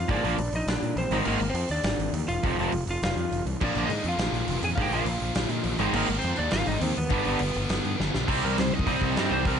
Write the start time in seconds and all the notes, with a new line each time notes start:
0.09 G#2 A#2 D3 F3 A#3 D4 D5, kick, open hi-hat
0.23 A#1 A#2 D3 F3 A#3 D4, open hi-hat
0.38 A#1, open hi-hat
0.52 A#1 D#5, open hi-hat
0.56 D#4
0.67 A#1 D4 D5, snare, open hi-hat
0.83 A#2, open hi-hat
0.96 A#1 C4 C5, open hi-hat
1.10 G#1 G#2 D#3 G#3 C4, open hi-hat
1.14 D#4
1.25 G#1 G#2 D#3 G#3 A#3 C4 D#4 A#4, crash
1.40 G#1, open hi-hat
1.49 C4 C5
1.54 F2, open hi-hat
1.69 D#2 D4 D5, open hi-hat
1.84 G#1, snare, open hi-hat
1.98 G#1, open hi-hat
2.13 D#2, open hi-hat
2.28 E1 F4 F5, open hi-hat
2.43 F1 F2 C3 F3 G#3 C4 F4, kick, open hi-hat
2.58 F1 F2 C3 F3 G#3 C4 F4, open hi-hat
2.72 F1, open hi-hat
2.87 F1 F4 F5, open hi-hat
3.02 F1 F4 F5, snare, open hi-hat
3.16 F2, open hi-hat
3.32 F1, open hi-hat
3.46 C2, open hi-hat
3.61 A#1 A#2 D3 F3 A#3 D4 F4 D5, kick, crash
3.75 A#1 A#2 D3 F3 A#3 F4, open hi-hat
3.86 G#2 D#4 D#5
3.90 open hi-hat
4.04 F2, open hi-hat
4.08 F4 F5
4.18 A#1, snare, open hi-hat
4.32 A#1, open hi-hat
4.47 F1, open hi-hat
4.62 F2 G#4 G#5, open hi-hat
4.75 G#2 A#2 D3 F3 D4 F5, kick, open hi-hat
4.79 A#3 F4 G4 G5
4.91 A#1 A#2 D3 F3 A#3 F4 F5, open hi-hat
5.05 A#1, open hi-hat
5.20 A#1, open hi-hat
5.35 A#1, snare, open hi-hat
5.49 A#2, open hi-hat
5.53 D#5
5.64 A#1, open hi-hat
5.78 G#1 G#2 D#3 G#3 C4 D#4, open hi-hat
5.93 G#1 G#2 D#3 G#3 A#3 C4 D#4 A#4, crash
6.08 G#1, open hi-hat
6.19 C4 C5, open hi-hat
6.24 F2
6.36 D#2 D4 D5, open hi-hat
6.51 G#1 F4 F5, snare, open hi-hat
6.66 G#1 D#4 D#5, open hi-hat
6.80 D#2 C4 C5, open hi-hat
6.97 D#2 B3 B4, open hi-hat
7.10 G1 G2 D3 G3 B3 D4, kick, open hi-hat
7.25 G1 G2 D3 G3 B3 D4, open hi-hat
7.39 G1, open hi-hat
7.54 G1, open hi-hat
7.69 G1, snare, open hi-hat
7.85 G2, open hi-hat
8.00 G1, snare
8.15 B1, snare
8.28 C2 C3 G3 C4 D#4, kick, crash
8.43 C2 A#4
8.57 C2 C3 G3 C5, snare, open hi-hat
8.73 C2 D#5
8.79 kick
8.87 C2 C3 G3 C4 D#4, kick, open hi-hat
9.01 C2, kick
9.16 G2 C3 G3 C4, snare, open hi-hat
9.31 C2 C5
9.45 C2 C3 G3 C4 D#4 A#4, kick, open hi-hat